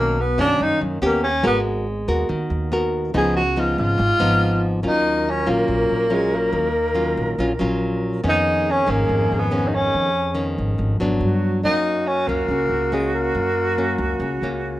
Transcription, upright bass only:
0, 0, Header, 1, 2, 480
1, 0, Start_track
1, 0, Key_signature, -6, "minor"
1, 0, Tempo, 424929
1, 1629, Time_signature, 4, 2, 24, 8
1, 16715, End_track
2, 0, Start_track
2, 0, Title_t, "Upright bass"
2, 0, Program_c, 0, 32
2, 0, Note_on_c, 0, 35, 95
2, 386, Note_off_c, 0, 35, 0
2, 430, Note_on_c, 0, 42, 86
2, 653, Note_off_c, 0, 42, 0
2, 683, Note_on_c, 0, 42, 86
2, 788, Note_off_c, 0, 42, 0
2, 919, Note_on_c, 0, 42, 89
2, 1138, Note_off_c, 0, 42, 0
2, 1148, Note_on_c, 0, 39, 112
2, 1595, Note_off_c, 0, 39, 0
2, 1622, Note_on_c, 0, 32, 94
2, 2300, Note_off_c, 0, 32, 0
2, 2349, Note_on_c, 0, 39, 94
2, 2572, Note_off_c, 0, 39, 0
2, 2590, Note_on_c, 0, 39, 92
2, 2701, Note_off_c, 0, 39, 0
2, 2825, Note_on_c, 0, 39, 91
2, 3501, Note_off_c, 0, 39, 0
2, 3548, Note_on_c, 0, 37, 100
2, 4223, Note_off_c, 0, 37, 0
2, 4272, Note_on_c, 0, 32, 90
2, 4493, Note_off_c, 0, 32, 0
2, 4510, Note_on_c, 0, 32, 92
2, 4621, Note_off_c, 0, 32, 0
2, 4742, Note_on_c, 0, 32, 88
2, 5420, Note_off_c, 0, 32, 0
2, 5467, Note_on_c, 0, 39, 88
2, 6142, Note_off_c, 0, 39, 0
2, 6178, Note_on_c, 0, 34, 87
2, 6406, Note_off_c, 0, 34, 0
2, 6422, Note_on_c, 0, 34, 84
2, 6648, Note_off_c, 0, 34, 0
2, 6655, Note_on_c, 0, 34, 73
2, 7337, Note_off_c, 0, 34, 0
2, 7371, Note_on_c, 0, 39, 98
2, 8055, Note_off_c, 0, 39, 0
2, 8101, Note_on_c, 0, 34, 88
2, 8328, Note_off_c, 0, 34, 0
2, 8340, Note_on_c, 0, 34, 86
2, 8567, Note_off_c, 0, 34, 0
2, 8590, Note_on_c, 0, 34, 75
2, 9265, Note_off_c, 0, 34, 0
2, 9307, Note_on_c, 0, 41, 90
2, 9983, Note_off_c, 0, 41, 0
2, 10027, Note_on_c, 0, 32, 92
2, 10251, Note_off_c, 0, 32, 0
2, 10266, Note_on_c, 0, 32, 84
2, 10491, Note_off_c, 0, 32, 0
2, 10525, Note_on_c, 0, 32, 81
2, 11192, Note_off_c, 0, 32, 0
2, 11228, Note_on_c, 0, 41, 79
2, 11904, Note_off_c, 0, 41, 0
2, 11955, Note_on_c, 0, 32, 84
2, 12176, Note_off_c, 0, 32, 0
2, 12186, Note_on_c, 0, 32, 90
2, 12411, Note_off_c, 0, 32, 0
2, 12424, Note_on_c, 0, 32, 74
2, 12651, Note_off_c, 0, 32, 0
2, 12656, Note_on_c, 0, 43, 92
2, 13109, Note_off_c, 0, 43, 0
2, 13141, Note_on_c, 0, 42, 85
2, 13821, Note_off_c, 0, 42, 0
2, 13862, Note_on_c, 0, 37, 87
2, 14089, Note_off_c, 0, 37, 0
2, 14101, Note_on_c, 0, 37, 85
2, 14329, Note_off_c, 0, 37, 0
2, 14341, Note_on_c, 0, 37, 80
2, 15021, Note_off_c, 0, 37, 0
2, 15076, Note_on_c, 0, 42, 84
2, 15749, Note_off_c, 0, 42, 0
2, 15794, Note_on_c, 0, 37, 89
2, 16016, Note_off_c, 0, 37, 0
2, 16036, Note_on_c, 0, 37, 89
2, 16257, Note_off_c, 0, 37, 0
2, 16286, Note_on_c, 0, 37, 71
2, 16715, Note_off_c, 0, 37, 0
2, 16715, End_track
0, 0, End_of_file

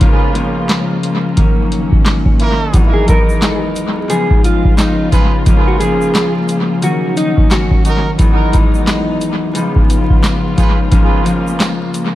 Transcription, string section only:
0, 0, Header, 1, 2, 480
1, 0, Start_track
1, 0, Tempo, 681818
1, 8, Time_signature, 4, 2, 24, 8
1, 8554, End_track
2, 0, Start_track
2, 0, Title_t, "String section"
2, 0, Program_c, 0, 48
2, 0, Note_on_c, 0, 49, 81
2, 0, Note_on_c, 0, 65, 91
2, 5, Note_on_c, 0, 53, 73
2, 6, Note_on_c, 0, 58, 78
2, 949, Note_off_c, 0, 49, 0
2, 949, Note_off_c, 0, 65, 0
2, 957, Note_off_c, 0, 53, 0
2, 966, Note_on_c, 0, 39, 73
2, 967, Note_on_c, 0, 54, 71
2, 967, Note_on_c, 0, 61, 83
2, 1908, Note_off_c, 0, 58, 0
2, 1917, Note_off_c, 0, 39, 0
2, 1918, Note_off_c, 0, 54, 0
2, 1918, Note_off_c, 0, 61, 0
2, 1932, Note_on_c, 0, 40, 75
2, 1932, Note_on_c, 0, 52, 72
2, 1933, Note_on_c, 0, 63, 87
2, 1934, Note_on_c, 0, 56, 71
2, 2880, Note_off_c, 0, 40, 0
2, 2881, Note_off_c, 0, 52, 0
2, 2881, Note_off_c, 0, 63, 0
2, 2890, Note_on_c, 0, 49, 82
2, 2890, Note_on_c, 0, 59, 74
2, 2891, Note_on_c, 0, 65, 88
2, 3832, Note_off_c, 0, 56, 0
2, 3839, Note_off_c, 0, 59, 0
2, 3846, Note_on_c, 0, 58, 72
2, 3848, Note_on_c, 0, 53, 77
2, 4790, Note_off_c, 0, 49, 0
2, 4790, Note_off_c, 0, 65, 0
2, 4798, Note_off_c, 0, 53, 0
2, 4815, Note_on_c, 0, 39, 85
2, 4815, Note_on_c, 0, 61, 87
2, 4816, Note_on_c, 0, 51, 77
2, 5748, Note_off_c, 0, 58, 0
2, 5762, Note_off_c, 0, 39, 0
2, 5762, Note_off_c, 0, 51, 0
2, 5762, Note_off_c, 0, 61, 0
2, 5771, Note_on_c, 0, 40, 72
2, 5771, Note_on_c, 0, 56, 69
2, 5772, Note_on_c, 0, 52, 70
2, 5772, Note_on_c, 0, 63, 96
2, 6720, Note_off_c, 0, 40, 0
2, 6720, Note_off_c, 0, 63, 0
2, 6721, Note_off_c, 0, 52, 0
2, 6730, Note_on_c, 0, 49, 78
2, 6730, Note_on_c, 0, 59, 76
2, 6730, Note_on_c, 0, 65, 88
2, 7671, Note_off_c, 0, 56, 0
2, 7679, Note_off_c, 0, 59, 0
2, 7690, Note_on_c, 0, 53, 75
2, 7690, Note_on_c, 0, 58, 78
2, 8554, Note_off_c, 0, 49, 0
2, 8554, Note_off_c, 0, 53, 0
2, 8554, Note_off_c, 0, 58, 0
2, 8554, Note_off_c, 0, 65, 0
2, 8554, End_track
0, 0, End_of_file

